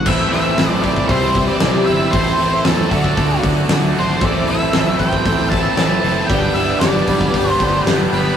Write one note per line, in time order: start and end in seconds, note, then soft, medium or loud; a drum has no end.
0.06 0.26 A1 medium
0.06 0.32 A2 medium
0.06 0.32 E3 medium
0.06 0.33 A3 loud
0.06 1.10 A3 medium
0.06 0.33 C4 loud
0.06 1.08 C4 medium
0.06 0.37 E4 medium
0.06 0.33 E4 loud
0.06 1.08 E4 medium
0.06 0.37 A4 medium
0.06 0.31 A4 medium
0.06 0.38 C5 medium
0.06 1.08 C5 medium
0.06 0.38 E5 medium
0.06 0.31 E5 loud
0.06 kick loud
0.06 crash loud
0.32 0.52 A1 medium
0.32 0.58 A2 medium
0.32 0.58 E3 medium
0.32 0.58 A3 medium
0.32 0.59 C4 medium
0.32 0.59 E4 medium
0.32 0.58 A4 medium
0.32 0.81 E5 loud
0.32 open hi-hat medium
0.43 1.07 E4 medium
0.43 1.09 A4 medium
0.43 1.08 C5 medium
0.43 1.09 E5 medium
0.58 0.78 A1 loud
0.58 0.83 A2 medium
0.58 0.84 E3 medium
0.58 0.84 A3 loud
0.58 0.85 C4 loud
0.58 0.84 E4 loud
0.58 0.82 A4 medium
0.58 snare loud
0.58 open hi-hat medium
0.83 1.03 B1 medium
0.83 1.08 A2 medium
0.83 1.09 E3 medium
0.83 1.09 A3 loud
0.83 1.09 C4 medium
0.83 1.09 E4 medium
0.83 1.10 A4 medium
0.83 1.10 D5 loud
0.83 kick medium
0.83 open hi-hat medium
0.88 1.10 D4 medium
0.96 kick medium
1.07 1.48 C2 medium
1.07 1.34 C3 medium
1.07 2.12 G3 medium
1.07 2.11 C4 medium
1.07 1.30 E4 medium
1.07 2.11 E4 medium
1.07 1.30 G4 medium
1.07 1.44 C5 medium
1.07 2.11 C5 medium
1.07 1.30 C5 medium
1.07 1.31 E5 medium
1.07 kick medium
1.07 open hi-hat medium
1.11 1.34 E3 loud
1.11 1.35 G3 loud
1.11 1.35 C4 loud
1.11 1.36 E4 loud
1.11 1.35 C5 medium
1.34 1.61 C3 medium
1.34 1.62 E3 medium
1.34 1.62 G3 medium
1.34 1.63 C4 medium
1.34 1.98 E4 medium
1.34 1.63 E4 loud
1.34 1.98 G4 medium
1.34 1.98 C5 medium
1.34 1.99 E5 medium
1.34 kick medium
1.34 open hi-hat medium
1.48 1.85 D4 medium
1.48 1.85 D5 loud
1.60 1.81 C2 medium
1.60 1.87 C3 medium
1.60 1.88 E3 medium
1.60 1.88 G3 medium
1.60 1.88 C4 loud
1.60 1.85 C5 medium
1.60 snare loud
1.60 open hi-hat medium
1.64 1.89 E4 loud
1.86 2.07 G1 medium
1.86 2.12 C3 medium
1.86 2.13 E3 medium
1.86 2.13 G3 medium
1.86 2.13 C4 medium
1.86 2.13 C5 medium
1.86 2.13 E5 medium
1.86 open hi-hat medium
1.90 2.13 E4 loud
2.11 2.33 A1 medium
2.11 2.39 A2 medium
2.11 2.88 A3 medium
2.11 2.90 C4 medium
2.11 2.44 E4 medium
2.11 2.90 E4 medium
2.11 2.44 A4 medium
2.11 2.37 A4 medium
2.11 2.65 C5 medium
2.11 2.90 C5 medium
2.11 2.44 C5 medium
2.11 2.45 E5 loud
2.11 kick loud
2.11 open hi-hat medium
2.15 2.40 E3 medium
2.15 2.41 A3 medium
2.15 2.40 C4 loud
2.15 2.41 E4 loud
2.27 snare soft
2.38 2.59 A1 medium
2.38 2.66 A2 medium
2.38 2.66 E3 medium
2.38 2.68 A3 medium
2.38 2.67 C4 medium
2.38 2.67 E4 medium
2.38 2.65 A4 medium
2.38 open hi-hat medium
2.52 2.91 E4 medium
2.52 2.90 A4 medium
2.52 2.92 C5 medium
2.52 2.92 E5 medium
2.65 2.86 E2 loud
2.65 2.91 A2 medium
2.65 2.91 E3 medium
2.65 2.93 A3 medium
2.65 2.91 C4 loud
2.65 2.92 E4 loud
2.65 2.90 A4 medium
2.65 2.91 A4 medium
2.65 snare loud
2.65 open hi-hat medium
2.89 3.11 D2 medium
2.89 4.19 A3 medium
2.89 4.19 D4 medium
2.89 4.20 F#4 medium
2.89 3.33 F#4 medium
2.89 3.40 A4 medium
2.89 3.33 A4 medium
2.89 3.18 A4 medium
2.89 4.19 D5 medium
2.89 3.33 D5 medium
2.89 kick medium
2.89 open hi-hat medium
2.93 3.18 D3 loud
2.93 3.18 A3 loud
2.93 3.18 D4 loud
2.93 3.19 F#4 loud
2.93 3.34 F#5 medium
3.04 kick medium
3.17 3.37 D2 medium
3.17 3.45 D3 medium
3.17 3.44 A3 loud
3.17 3.45 D4 loud
3.17 3.45 F#4 loud
3.17 3.43 A4 medium
3.17 kick loud
3.17 open hi-hat medium
3.42 3.63 D2 medium
3.42 3.68 D3 medium
3.42 3.69 A3 medium
3.42 3.69 F#4 medium
3.42 4.05 F#4 medium
3.42 4.06 A4 medium
3.42 3.70 A4 medium
3.42 4.06 D5 medium
3.42 4.06 F#5 medium
3.42 kick medium
3.42 open hi-hat medium
3.46 3.69 D4 medium
3.46 3.70 F#4 medium
3.69 3.91 D2 loud
3.69 3.95 D3 medium
3.69 3.95 A3 loud
3.69 3.95 D4 medium
3.69 3.97 F#4 loud
3.69 3.95 A4 loud
3.69 snare loud
3.69 open hi-hat medium
3.95 4.17 G#1 medium
3.95 4.21 D3 medium
3.95 4.20 A3 medium
3.95 4.21 D4 medium
3.95 4.21 F#4 medium
3.95 4.22 A4 medium
3.95 open hi-hat medium
3.99 4.22 C4 medium
3.99 4.24 C5 medium
4.20 4.41 A1 loud
4.20 4.47 A2 loud
4.20 4.47 E3 loud
4.20 6.27 A3 medium
4.20 4.47 A3 loud
4.20 6.27 C4 medium
4.20 4.47 C4 loud
4.20 6.27 E4 medium
4.20 4.53 E4 medium
4.20 4.47 E4 loud
4.20 4.53 A4 medium
4.20 4.47 A4 medium
4.20 6.27 C5 medium
4.20 4.53 C5 medium
4.20 kick loud
4.20 open hi-hat medium
4.24 4.48 A4 medium
4.24 4.49 D5 medium
4.24 4.54 E5 medium
4.47 4.68 A1 medium
4.47 4.72 A2 medium
4.47 4.72 E3 medium
4.47 4.73 A3 medium
4.47 4.73 C4 medium
4.47 4.73 E4 medium
4.47 4.73 A4 medium
4.47 5.02 E5 loud
4.47 open hi-hat medium
4.60 5.33 E4 medium
4.60 5.33 A4 medium
4.60 5.33 C5 medium
4.60 5.34 E5 medium
4.73 4.93 A1 loud
4.73 4.97 A2 medium
4.73 4.97 E3 medium
4.73 4.98 A3 loud
4.73 4.98 C4 loud
4.73 4.99 E4 loud
4.73 4.98 A4 medium
4.73 snare loud
4.73 open hi-hat medium
4.98 5.19 A1 medium
4.98 5.24 A2 medium
4.98 5.24 E3 medium
4.98 5.25 A3 medium
4.98 5.25 C4 loud
4.98 5.25 E4 loud
4.98 5.25 A4 medium
4.98 5.49 C5 medium
4.98 5.49 G5 loud
4.98 kick medium
4.98 open hi-hat medium
5.13 kick medium
5.25 5.65 A1 medium
5.25 5.49 A2 loud
5.25 5.50 E3 loud
5.25 5.51 A3 loud
5.25 5.51 C4 loud
5.25 5.51 E4 loud
5.25 5.49 A4 medium
5.25 kick loud
5.25 open hi-hat medium
5.50 5.77 A2 medium
5.50 5.77 E3 medium
5.50 5.77 A3 medium
5.50 5.77 C4 medium
5.50 6.14 E4 medium
5.50 5.78 E4 medium
5.50 5.77 A4 medium
5.50 6.14 A4 medium
5.50 6.15 C5 medium
5.50 6.15 E5 medium
5.50 5.75 A5 loud
5.50 kick medium
5.50 open hi-hat medium
5.55 5.75 A2 medium
5.55 5.78 A4 medium
5.76 5.97 A1 loud
5.76 6.03 A2 medium
5.76 6.03 E3 medium
5.76 6.04 A3 loud
5.76 6.04 C4 loud
5.76 6.05 E4 loud
5.76 6.28 A4 medium
5.76 6.26 A5 loud
5.76 snare loud
5.76 open hi-hat medium
5.81 6.02 A4 medium
6.02 6.23 F#1 medium
6.02 6.29 A2 medium
6.02 6.29 E3 medium
6.02 6.29 A3 medium
6.02 6.29 C4 medium
6.02 6.30 E4 medium
6.02 6.28 A4 medium
6.02 open hi-hat medium
6.27 6.50 G1 medium
6.27 6.55 G2 loud
6.27 6.56 D3 loud
6.27 6.56 G3 loud
6.27 8.37 G3 medium
6.27 8.37 B3 medium
6.27 6.56 B3 loud
6.27 6.60 D4 medium
6.27 8.37 D4 medium
6.27 6.61 G4 medium
6.27 6.55 G4 medium
6.27 6.61 B4 medium
6.27 8.37 B4 medium
6.27 6.54 B4 medium
6.27 6.62 D5 loud
6.27 6.53 G5 loud
6.27 kick loud
6.27 open hi-hat medium
6.31 6.56 D4 loud
6.53 6.74 G1 medium
6.53 6.82 G2 medium
6.53 6.83 G3 medium
6.53 6.81 G4 soft
6.53 6.81 B4 medium
6.53 6.80 E5 medium
6.53 open hi-hat medium
6.57 6.83 D3 medium
6.57 6.83 B3 medium
6.57 6.83 D4 medium
6.57 6.81 E4 medium
6.66 7.41 D4 medium
6.66 7.41 G4 medium
6.66 7.42 B4 medium
6.66 7.42 D5 medium
6.80 7.00 G1 loud
6.80 7.07 G2 medium
6.80 7.07 D3 loud
6.80 7.08 G3 medium
6.80 7.08 G4 medium
6.80 7.06 B4 loud
6.80 7.51 D5 medium
6.80 snare loud
6.80 open hi-hat medium
6.84 7.08 B3 loud
6.84 7.08 D4 loud
7.07 7.28 G1 medium
7.07 7.32 G2 medium
7.07 7.32 D3 loud
7.07 7.32 G3 medium
7.07 7.33 B3 medium
7.07 7.33 D4 medium
7.07 7.34 G4 medium
7.07 7.34 B4 medium
7.07 kick medium
7.07 open hi-hat medium
7.21 kick medium
7.33 7.54 G1 medium
7.33 7.59 G2 loud
7.33 7.60 D3 loud
7.33 7.60 G3 medium
7.33 7.61 B3 loud
7.33 7.61 D4 loud
7.33 7.61 G4 medium
7.33 7.59 B4 medium
7.33 kick loud
7.33 open hi-hat medium
7.51 7.84 C4 medium
7.51 7.82 C5 medium
7.57 7.80 G1 medium
7.57 7.85 G2 medium
7.57 7.85 D3 medium
7.57 8.22 D4 medium
7.57 8.22 G4 medium
7.57 8.23 B4 medium
7.57 8.23 D5 medium
7.57 kick medium
7.57 open hi-hat medium
7.61 7.85 G2 medium
7.61 7.86 G3 medium
7.61 7.86 B3 medium
7.61 7.86 D4 medium
7.61 7.84 G4 medium
7.85 8.06 G1 medium
7.85 8.12 G2 medium
7.85 8.12 D3 loud
7.85 8.12 G3 medium
7.85 8.13 B3 medium
7.85 8.13 D4 loud
7.85 8.11 G4 medium
7.85 8.10 B4 medium
7.85 snare loud
7.85 open hi-hat medium
8.11 8.32 G1 medium
8.11 8.37 G2 medium
8.11 8.37 D3 medium
8.11 8.37 G3 medium
8.11 8.37 B3 medium
8.11 8.37 D4 medium
8.11 8.37 G4 medium
8.11 8.37 B4 medium
8.11 open hi-hat medium